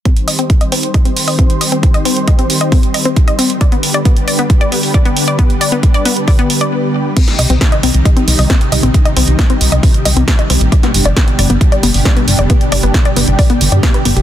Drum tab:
CC |----------------|----------------|----------------|----------------|
HH |xxoxxxoxxxooxxox|xxoxxxoxoxoxxxox|xxoxxxoxxxooxxox|xxoxxxoxoxox----|
SD |----------------|----------------|----------------|----------------|
BD |o---o---o---o---|o---o---o---o---|o---o---o---o---|o---o---o-------|

CC |x---------------|----------------|----------------|----------------|
HH |xxoxxxoxxxooxxox|xxoxxxoxoxoxxxox|xxoxxxoxxxooxxox|xxoxxxoxoxoxxxox|
SD |-o--o-------o---|----o-------o---|-o--o-------o---|----o-------o---|
BD |o---o---o---o---|o---o---o---o---|o---o---o---o---|o---o---o---o---|